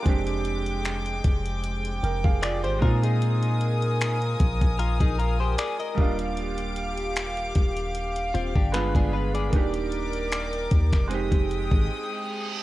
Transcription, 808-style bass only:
X:1
M:4/4
L:1/16
Q:"Swing 16ths" 1/4=76
K:Fdor
V:1 name="808-style bass" clef=bass
F,,,6 F,,,4 F,,, F,,,2 A,,, B,,2- | B,,6 B,,, B,,,2 B,,,3 z2 E,,,2- | E,,,6 E,,,4 E,,, G,,,2 G,,,3 | E,,,6 E,, F,,,2 F,,,2 A,,, z4 |]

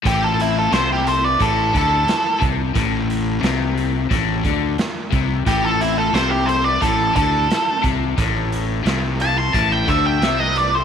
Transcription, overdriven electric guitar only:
X:1
M:4/4
L:1/8
Q:1/4=88
K:Am
V:1 name="Overdriven electric guitar" clef=bass
A,,2 C,2 A,, D, z C, | A,,2 C,2 A,, D, z C, | A,,2 C,2 A,, D, z C, | A,,2 C,2 A,, D, C,2 |]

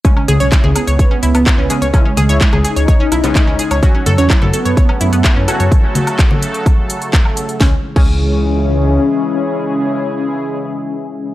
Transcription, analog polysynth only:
X:1
M:4/4
L:1/16
Q:1/4=127
K:C#m
V:1 name="Analog polysynth" clef=bass
C C, C, C C, C, B,8- B, z | E G, G, E G, G, D8- D z | C F, F, C F, F, B,8- B, z | z16 |
C z2 C12- C- | C16 |]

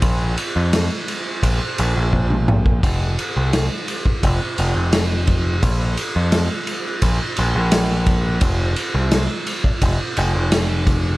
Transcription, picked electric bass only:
X:1
M:4/4
L:1/16
Q:1/4=86
K:Bb
V:1 name="Picked electric bass" clef=bass
B,,,2 z F,,2 z3 B,,, z B,,, B,,,4- B,,, | F,,,2 z C,,2 z3 F,,, z F,,, F,,,4- F,,, | B,,,2 z F,,2 z3 B,,, z B,,, B,,,4- B,,, | F,,,2 z C,,2 z3 F,,, z F,,, F,,,4- F,,, |]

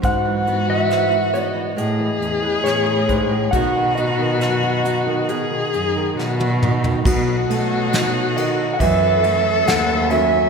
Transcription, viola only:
X:1
M:4/4
L:1/8
Q:1/4=68
K:Bmix
V:1 name="Viola"
F4 G4 | F4 G2 F D | F4 A4 |]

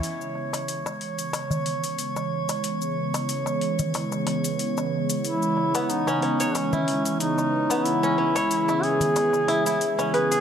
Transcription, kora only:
X:1
M:4/4
L:1/16
Q:"Swing 16ths" 1/4=92
K:C#m
V:1 name="Kora"
z16 | z16 | z3 B, z C C c2 E z4 z B, | z C C c2 E z4 E E z C B G |]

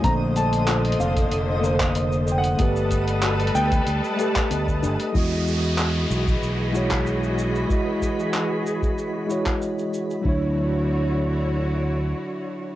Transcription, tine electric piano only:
X:1
M:4/4
L:1/8
Q:1/4=94
K:Emix
V:1 name="Tine electric piano"
[D,A,_B,=c]4- [D,A,B,c] [D,B,Ac]3 | [A,=GAB]4- [A,GAB] [A,GA]3 | [G,EF^d]4- [G,EFd] [G,EFc]3 | [G,EF^d]4- [G,EFd] [G,EFc]3 |
[F,DEc]8 |]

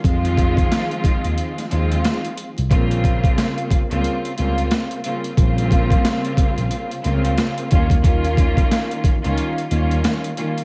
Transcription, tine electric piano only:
X:1
M:4/4
L:1/16
Q:"Swing 16ths" 1/4=90
K:Bbdor
V:1 name="Tine electric piano" clef=bass
F,,4 z3 E,, z2 E,,2 z3 C,, | B,,,4 z3 D,, z2 D,,2 z4 | B,,,4 z3 B,,, z2 D,,2 z2 E,,2- | E,,4 z3 D,, z2 E,,2 z4 |]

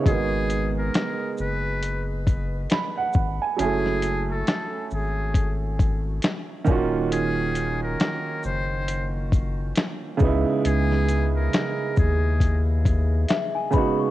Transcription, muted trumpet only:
X:1
M:4/4
L:1/16
Q:"Swing 16ths" 1/4=68
K:G#m
V:1 name="Muted trumpet"
G3 A3 B3 z6 z | G3 =A3 G3 z6 z | G3 A3 ^B3 z6 z | G3 A3 G3 z6 z |]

